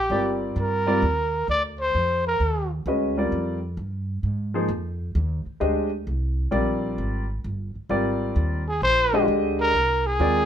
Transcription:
Already playing: G4
0.10 G1 G3 C4 F4 A#4 D5
0.56 G2 A#4
0.87 G3 C4 F4 A#4 D5
1.02 D#2
1.48 D2 D5
1.80 C5
1.95 F2
2.27 A#4
2.40 D#2
2.86 D2 G#3 C#4 F#4 B4 D#5
3.17 G3 C4 F4 A#4 D5
3.32 F2
3.77 G2
4.23 G#2
4.54 F3 A#3 D#4 G#4 C5
4.69 F2
5.15 D#2
5.46 muted upright bass stroke
5.60 D2 G#3 D4 G4 C5 D#5
6.07 C2
6.51 A#1 G3 C4 F4 A#4 D5
6.98 G#1
7.44 G1
7.76 muted upright bass stroke
7.89 G#1 G3 C4 F4 A#4 D5
8.36 D#2
8.68 G#4
8.82 A#1 C5
9.13 D3 G#3 G4 C5 D#5
9.28 D2
9.61 A#4
9.74 C2
10.06 G#4
10.19 D#2 G#3 C4 F4 A#4 D5

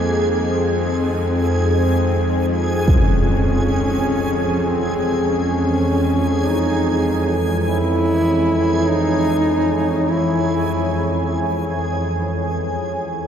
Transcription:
Already playing: F2 A#3 D#4 G#4 C5 D#5
0.52 C4
1.73 C4
2.88 C#4 C#5, impact
3.28 E3
4.69 C4
5.28 C#4
6.47 D#4 G#5
7.67 E4
8.88 D#4
10.10 E4

